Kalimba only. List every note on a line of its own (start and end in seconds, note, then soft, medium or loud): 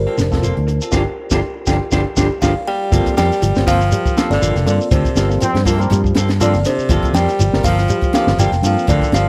0.00 2.39 A#4 medium
2.42 2.53 F5 medium
2.67 3.14 G5 loud
3.18 3.64 G5 loud
3.68 4.27 F5 loud
4.31 4.67 D5 medium
4.68 4.79 D5 medium
4.92 5.38 C5 medium
6.43 6.53 D5 loud
6.66 7.17 C5 medium
7.15 7.61 G5 loud
7.64 8.11 F5 loud
8.15 8.38 F5 loud
8.40 8.51 G5 loud
8.66 8.88 F5 medium
8.89 9.12 D5 medium
9.14 9.29 F5 medium